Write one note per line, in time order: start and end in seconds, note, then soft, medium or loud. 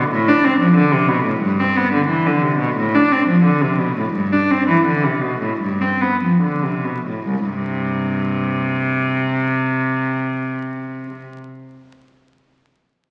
0.00 0.11 B2 medium
0.10 0.26 A2 medium
0.28 0.44 D4 medium
0.44 0.60 C4 medium
0.60 0.75 F3 medium
0.75 0.91 D3 medium
0.91 1.08 C3 medium
1.08 1.25 B2 medium
1.25 1.42 A2 medium
1.41 1.59 G2 medium
1.60 1.77 C4 medium
1.76 1.93 B3 medium
1.93 2.09 D3 medium
2.08 2.25 E3 medium
2.26 2.43 D3 medium
2.42 2.59 C3 medium
2.58 2.76 B2 medium
2.76 2.93 A2 medium
2.95 3.11 D4 medium
3.12 3.28 C4 medium
3.28 3.45 F3 medium
3.44 3.61 D3 medium
3.61 3.79 C3 medium
3.79 3.97 B2 medium
3.97 4.14 A2 medium
4.13 4.32 G2 medium
4.33 4.51 D4 medium
4.51 4.69 C4 medium
4.68 4.86 E3 medium
4.85 5.04 D3 medium
5.04 5.23 C3 medium
5.23 5.42 B2 medium
5.41 5.60 A2 soft
5.60 5.79 G2 medium
5.81 6.00 C4 medium
6.01 6.21 B3 medium
6.22 6.41 F3 soft
6.41 6.61 D3 soft
6.63 6.84 C3 soft
6.84 7.05 B2 soft
7.06 7.26 A2 soft
7.27 7.47 C2 medium
7.48 9.11 G2 soft
7.48 11.36 C3 medium